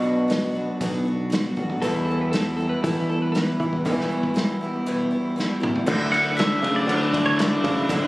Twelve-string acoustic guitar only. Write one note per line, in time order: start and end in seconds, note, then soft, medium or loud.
0.02 0.29 B3 soft
0.02 0.29 D4 soft
0.02 0.28 F#4 medium
0.28 0.54 F#3 medium
0.28 0.55 B3 medium
0.28 0.54 D4 medium
0.28 0.52 F#4 medium
0.53 0.81 B3 soft
0.53 0.80 D4 medium
0.53 0.79 F#4 soft
0.81 1.06 B2 medium
0.81 1.06 F#3 medium
0.81 1.06 B3 medium
0.81 1.06 D4 medium
0.81 1.04 F#4 medium
1.05 1.31 B3 soft
1.05 1.31 D4 soft
1.05 1.31 F#4 medium
1.30 1.56 F#3 medium
1.30 1.57 B3 medium
1.30 1.57 D4 medium
1.30 1.55 F#4 medium
1.56 1.83 B3 soft
1.56 1.83 D4 soft
1.56 1.82 F#4 medium
1.83 2.08 E2 medium
1.83 2.08 B2 medium
1.83 2.08 E3 medium
1.83 2.08 G3 medium
1.83 2.09 B3 medium
1.83 2.07 E4 medium
2.09 2.31 E3 soft
2.09 2.33 G3 soft
2.09 2.34 B3 soft
2.09 2.33 E4 soft
2.33 2.58 E3 medium
2.33 2.59 G3 medium
2.33 2.59 B3 medium
2.33 2.57 E4 medium
2.58 2.84 E3 soft
2.58 2.84 G3 soft
2.58 2.84 B3 medium
2.58 2.83 E4 medium
2.84 3.09 E2 medium
2.84 3.09 B2 medium
2.84 3.10 E3 medium
2.84 3.10 G3 medium
2.84 3.09 B3 medium
2.84 3.08 E4 medium
3.09 3.33 E3 soft
3.09 3.34 G3 soft
3.09 3.35 B3 soft
3.09 3.34 E4 medium
3.34 3.60 E3 medium
3.34 3.60 G3 medium
3.34 3.61 B3 medium
3.34 3.59 E4 medium
3.61 3.85 E3 soft
3.61 3.85 G3 soft
3.61 3.86 B3 medium
3.61 3.85 E4 medium
3.85 4.10 E2 medium
3.85 4.11 B2 medium
3.85 4.11 E3 medium
3.85 4.11 G3 medium
3.85 4.10 B3 medium
3.85 4.09 E4 medium
4.10 4.33 E3 soft
4.10 4.34 G3 soft
4.10 4.35 B3 soft
4.10 4.35 E4 medium
4.34 4.60 E3 medium
4.34 4.61 G3 medium
4.34 4.61 B3 medium
4.34 4.60 E4 medium
4.61 4.85 E3 soft
4.61 4.86 G3 soft
4.61 4.87 B3 soft
4.61 4.86 E4 soft
4.86 5.12 E2 medium
4.86 5.12 B2 medium
4.86 5.12 E3 medium
4.86 5.12 G3 medium
4.86 5.11 B3 medium
4.86 5.10 E4 medium
5.11 5.35 E3 soft
5.11 5.36 G3 soft
5.11 5.37 B3 soft
5.11 5.37 E4 medium
5.36 5.62 E3 medium
5.36 5.62 G3 medium
5.36 5.60 B3 medium
5.36 5.59 E4 medium
5.60 5.86 E3 soft
5.60 5.87 G3 soft
5.60 5.87 B3 soft
5.60 5.87 E4 soft
5.86 6.12 D3 medium
5.86 6.12 F#3 medium
5.86 6.13 A3 medium
5.86 6.12 D4 medium
5.86 6.10 E4 medium
6.11 6.37 A3 soft
6.11 6.38 D4 soft
6.11 6.37 E4 medium
6.37 6.63 D3 medium
6.37 6.63 F#3 medium
6.37 6.63 A3 medium
6.37 6.62 D4 medium
6.37 6.61 E4 medium
6.62 6.88 A3 soft
6.62 6.89 D4 medium
6.62 6.88 E4 medium
6.88 7.13 F#3 medium
6.88 7.14 A3 medium
6.88 7.14 D4 medium
6.88 7.12 E4 medium
7.13 7.40 A3 soft
7.13 7.40 D4 soft
7.13 7.39 E4 soft
7.39 7.64 D3 medium
7.39 7.65 F#3 medium
7.39 7.65 A3 medium
7.39 7.66 D4 medium
7.39 7.63 E4 medium
7.65 7.89 A3 soft
7.65 7.90 D4 soft
7.65 7.90 E4 medium
7.89 8.07 D3 medium
7.89 8.07 F#3 medium
7.89 8.07 A3 medium
7.89 8.07 D4 medium
7.89 8.07 E4 loud